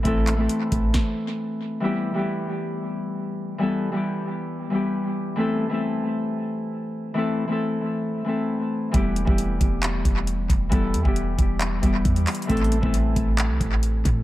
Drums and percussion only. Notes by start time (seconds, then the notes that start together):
0.05 kick, closed hi-hat
0.27 clap, closed hi-hat
0.49 closed hi-hat
0.72 kick, closed hi-hat
0.94 kick, snare
8.94 kick, closed hi-hat
9.16 closed hi-hat
9.27 kick
9.38 closed hi-hat
9.61 kick, closed hi-hat
9.83 clap, closed hi-hat
10.05 kick, closed hi-hat
10.27 closed hi-hat
10.50 kick, closed hi-hat
10.72 kick, closed hi-hat
10.94 closed hi-hat
11.05 kick
11.16 closed hi-hat
11.38 kick, closed hi-hat
11.61 clap, closed hi-hat
11.83 kick, closed hi-hat
12.05 kick, closed hi-hat
12.16 closed hi-hat
12.27 clap, closed hi-hat, open hi-hat
12.35 closed hi-hat
12.42 closed hi-hat
12.50 kick, closed hi-hat
12.57 closed hi-hat
12.64 closed hi-hat
12.72 closed hi-hat
12.83 kick
12.94 closed hi-hat
13.16 kick, closed hi-hat
13.38 clap, closed hi-hat
13.61 kick, closed hi-hat
13.83 closed hi-hat
14.05 kick, closed hi-hat